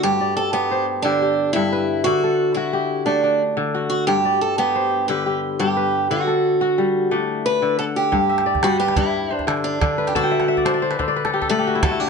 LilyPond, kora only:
<<
  \new Staff \with { instrumentName = "Kora" } { \time 12/8 \key g \major \tempo 4. = 119 << { r1. | r1. | r1. | r1. |
r1. | a''16 g''16 e''16 fis''16 e''16 d''16 c''16 d''16 c''16 b'16 c''16 d''16 b'16 a'16 g'16 a'16 a'16 g'16 fis'16 e'16 fis'16 e'16 d'8 | } \\ { fis'8 d''4. c''4 g'8 g'4. b'4~ | b'8 a'4. g'4 d'8 d'4. fis'4~ | fis'8 d''4. c''4 g'8 g'4. b'4~ | b'8 a'4. g4 d'4. r8 fis''4~ |
fis''8 e''8 d''4 b'4. c''4. r8 b'8~ | b'8 r1 r4. | } >> }
  \new Staff \with { instrumentName = "Kora" } { \clef bass \time 12/8 \key g \major g,4 r8 b4 r8 d4 r8 g,4 r8 | d4 r8 fis'4 r8 a4 r8 d4 r8 | g,4 r8 b4 r8 d4 r8 g,4 r8 | d4 r8 fis'4 r8 a4 r8 d4 r8 |
g,4 r8 g4 g,4 r8 d4 d4 | d4 r8 d'4 d4 r8 a4 a4 | }
>>